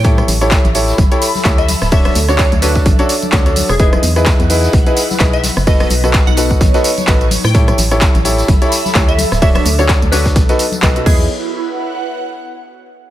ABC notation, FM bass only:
X:1
M:4/4
L:1/16
Q:"Swing 16ths" 1/4=128
K:Alyd
V:1 name="FM bass" clef=bass
A,,2 A,,,3 A,,,3 =G,,, z3 =D,,3 =D,,,- | =D,,,2 =D,,3 D,,3 A,,, z3 D,,3 E,,,- | E,,,2 E,,3 E,,3 B,,, z3 B,,,3 F,,,- | F,,,2 B,,,3 B,,,3 A,,, z3 A,,,3 A,,- |
A,,2 A,,,3 A,,,3 =G,,, z3 =D,,3 =D,,,- | =D,,,2 =D,,3 D,,3 B,,, z3 B,,,2 E,,2 | z16 |]